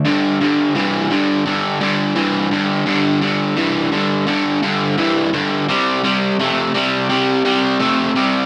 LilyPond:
\new Staff \with { instrumentName = "Overdriven electric guitar" } { \clef bass \time 4/4 \key c \major \tempo 4 = 85 <g, d>8 <g, d>8 <g, e>8 <g, d>8 <g, d>8 <g, d>8 <g, e>8 <g, d>8 | <g, d>8 <g, d>8 <g, e>8 <g, d>8 <g, d>8 <g, d>8 <g, e>8 <g, d>8 | <c g>8 <c g>8 <c a>8 <c g>8 <c g>8 <c g>8 <c a>8 <c g>8 | }